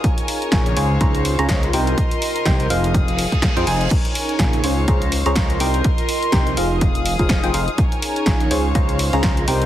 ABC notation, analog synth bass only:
X:1
M:4/4
L:1/16
Q:"Swing 16ths" 1/4=124
K:Fm
V:1 name="Analog synth bass" clef=bass
z4 B,,,2 D,,2 D,,3 D,, D,,2 C,,2 | z4 C,,2 F,,,4- F,,, z2 F,, F,,,2 | z4 B,,,2 D,,2 D,,3 D,, D,,2 C,,2 | z4 C,,2 F,,,4- F,,, F,,,2 F,,, F,,, z |
z4 B,,,2 D,,2 D,,3 D,, D,,2 C,,2 |]